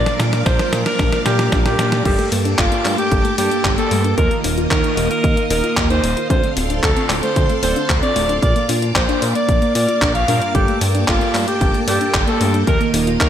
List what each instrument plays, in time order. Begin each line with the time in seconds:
Already playing: analog polysynth A#2 A#3 D4 F4 A#4, string machine A#4 D5 F5 D6, alto saxophone D5
0.06 synth arpeggio sound D5, snare, closed hi-hat
0.19 analog synth bass A#2, synth arpeggio sound F4, snare, closed hi-hat
0.33 synth arpeggio sound D5, snare, closed hi-hat
0.46 analog synth bass A#1, alto saxophone C5, synth arpeggio sound D5, kick, snare, closed hi-hat
0.59 synth arpeggio sound A#4, snare, closed hi-hat
0.73 analog synth bass A#2, synth arpeggio sound F3, snare, closed hi-hat
0.86 alto saxophone A#4, synth arpeggio sound D5, snare, closed hi-hat
0.99 analog synth bass A#1, synth arpeggio sound D4, kick, snare, closed hi-hat
1.12 synth arpeggio sound F3, snare, closed hi-hat
1.25 analog synth bass A#2, analog polysynth A#2 A#3 D4 F4 A#4, alto saxophone G4, synth arpeggio sound D5, snare, closed hi-hat
1.39 synth arpeggio sound F4, snare, closed hi-hat
1.52 analog synth bass A#1, synth arpeggio sound D4, kick, snare, closed hi-hat
1.65 alto saxophone G4, synth arpeggio sound D5, snare, closed hi-hat
1.79 analog synth bass A#2, synth arpeggio sound D4, snare, closed hi-hat
1.92 synth arpeggio sound D5, snare, closed hi-hat
2.05 analog synth bass G1, analog polysynth G2 A#3 D4 G4 A4, synth arpeggio sound G3, string machine A#3 G5 A5 D6, alto saxophone G4, kick, closed hi-hat, crash
2.19 synth arpeggio sound A3, closed hi-hat
2.32 analog synth bass G2, synth arpeggio sound A#3, open hi-hat
2.45 synth arpeggio sound D4, closed hi-hat
2.58 analog synth bass G1, alto saxophone F4, synth arpeggio sound A4, kick, clap, closed hi-hat
2.72 synth arpeggio sound A#3, closed hi-hat
2.85 analog synth bass G2, synth arpeggio sound A3, clap, open hi-hat
2.98 synth arpeggio sound A3, alto saxophone G4, closed hi-hat
3.11 analog synth bass G1, synth arpeggio sound A4, kick, closed hi-hat
3.25 synth arpeggio sound A3, closed hi-hat
3.38 analog synth bass G2, analog polysynth G2 A#3 D4 G4 A4, synth arpeggio sound A#3, alto saxophone G4, open hi-hat
3.51 synth arpeggio sound D4, closed hi-hat
3.64 analog synth bass G1, synth arpeggio sound A4, kick, clap, closed hi-hat
3.78 synth arpeggio sound A#3, alto saxophone A4, closed hi-hat
3.91 analog synth bass G2, synth arpeggio sound A3, open hi-hat
4.04 synth arpeggio sound D4, closed hi-hat
4.18 analog synth bass D#2, analog polysynth D#3 A#3 D#4 F4 A#4, synth arpeggio sound F3, alto saxophone A#4, string machine D#5 F5 D#6, kick, closed hi-hat
4.31 synth arpeggio sound A#3, closed hi-hat
4.44 analog synth bass D#1, synth arpeggio sound D#4, open hi-hat
4.57 synth arpeggio sound F4, closed hi-hat
4.71 analog synth bass D#2, alto saxophone A#4, synth arpeggio sound D#5, kick, clap, closed hi-hat
4.84 synth arpeggio sound D#4, closed hi-hat
4.97 analog synth bass D#1, synth arpeggio sound A#3, open hi-hat
5.11 synth arpeggio sound A#3, alto saxophone A#4, closed hi-hat
5.24 analog synth bass D#2, synth arpeggio sound D#5, kick, closed hi-hat
5.37 synth arpeggio sound A#3, closed hi-hat
5.50 analog synth bass D#1, analog polysynth D#3 A#3 D#4 F4 A#4, synth arpeggio sound D#4, alto saxophone A#4, open hi-hat
5.64 synth arpeggio sound F4, closed hi-hat
5.77 analog synth bass D#2, synth arpeggio sound D#5, kick, clap, closed hi-hat
5.90 synth arpeggio sound D#4, alto saxophone C5, closed hi-hat
6.03 analog synth bass D#1, synth arpeggio sound A#3, open hi-hat
6.17 synth arpeggio sound F4, closed hi-hat
6.30 analog synth bass D2, analog polysynth D3 C4 D4 F4 A4, synth arpeggio sound F3, string machine A4 D5 C6, alto saxophone C5, kick, closed hi-hat
6.43 synth arpeggio sound A3, closed hi-hat
6.57 analog synth bass D1, synth arpeggio sound C4, open hi-hat
6.70 synth arpeggio sound D4, closed hi-hat
6.83 analog synth bass D2, alto saxophone A4, synth arpeggio sound A4, kick, clap, closed hi-hat
6.96 synth arpeggio sound C4, closed hi-hat
7.10 analog synth bass D1, synth arpeggio sound A3, clap, open hi-hat
7.23 synth arpeggio sound A3, alto saxophone C5, closed hi-hat
7.36 analog synth bass D2, synth arpeggio sound A4, kick, closed hi-hat
7.50 synth arpeggio sound A3, closed hi-hat
7.63 analog synth bass D1, analog polysynth D3 C4 D4 F4 A4, synth arpeggio sound C4, alto saxophone C5, open hi-hat
7.76 synth arpeggio sound D4, closed hi-hat
7.89 analog synth bass D2, synth arpeggio sound A4, kick, clap, closed hi-hat
8.03 synth arpeggio sound C4, alto saxophone D5, closed hi-hat
8.16 analog synth bass D1, synth arpeggio sound A3, open hi-hat
8.29 synth arpeggio sound D4, closed hi-hat
8.42 analog synth bass A#1, analog polysynth A#2 A#3 D4 F4 A#4, synth arpeggio sound F3, string machine A#3 D6, alto saxophone D5, kick, closed hi-hat
8.56 synth arpeggio sound A#3, closed hi-hat
8.69 analog synth bass A#2, synth arpeggio sound D4, open hi-hat
8.82 synth arpeggio sound F4, closed hi-hat
8.96 analog synth bass A#1, alto saxophone C5, synth arpeggio sound D5, kick, clap, closed hi-hat
9.09 synth arpeggio sound D4, closed hi-hat
9.22 analog synth bass A#2, synth arpeggio sound A#3, open hi-hat
9.35 synth arpeggio sound A#3, alto saxophone D5, closed hi-hat
9.49 analog synth bass A#1, synth arpeggio sound D5, kick, closed hi-hat
9.62 synth arpeggio sound A#3, closed hi-hat
9.75 analog synth bass A#2, synth arpeggio sound D5, alto saxophone D5, open hi-hat
9.88 synth arpeggio sound F4, closed hi-hat
10.02 analog synth bass A#1, synth arpeggio sound D4, kick, clap, closed hi-hat
10.15 synth arpeggio sound D5, alto saxophone F5, closed hi-hat
10.28 analog polysynth G2 A#3 D4 F4 A#4, analog synth bass A#2, synth arpeggio sound D4, open hi-hat
10.42 synth arpeggio sound D5, closed hi-hat
10.55 analog synth bass G1, analog polysynth G2 A#3 D4 G4 A4, synth arpeggio sound G3, alto saxophone G4, string machine G5 A5, kick, closed hi-hat
10.68 synth arpeggio sound A3, closed hi-hat
10.81 analog synth bass G2, synth arpeggio sound A#3, open hi-hat
10.95 synth arpeggio sound D4, closed hi-hat
11.08 analog synth bass G1, alto saxophone F4, synth arpeggio sound A4, kick, clap, closed hi-hat
11.21 synth arpeggio sound A#3, closed hi-hat
11.34 analog synth bass G2, synth arpeggio sound A3, clap, open hi-hat
11.48 synth arpeggio sound A3, alto saxophone G4, closed hi-hat
11.61 analog synth bass G1, synth arpeggio sound A4, kick, closed hi-hat
11.74 synth arpeggio sound A3, closed hi-hat
11.88 analog synth bass G2, analog polysynth G2 A#3 D4 G4 A4, synth arpeggio sound A#3, alto saxophone G4, open hi-hat
12.01 synth arpeggio sound D4, closed hi-hat
12.14 analog synth bass G1, synth arpeggio sound A4, kick, clap, closed hi-hat
12.27 synth arpeggio sound A#3, alto saxophone A4, closed hi-hat
12.41 analog synth bass G2, synth arpeggio sound A3, open hi-hat
12.54 synth arpeggio sound D4, closed hi-hat
12.67 analog synth bass D#2, analog polysynth D#3 A#3 D#4 F4 A#4, synth arpeggio sound F3, alto saxophone A#4, string machine D#5 F5 D#6, kick, closed hi-hat
12.81 synth arpeggio sound A#3, closed hi-hat
12.94 analog synth bass D#1, synth arpeggio sound D#4, open hi-hat
13.07 synth arpeggio sound F4, closed hi-hat
13.20 analog synth bass D#2, alto saxophone A#4, synth arpeggio sound D#5, kick, clap, closed hi-hat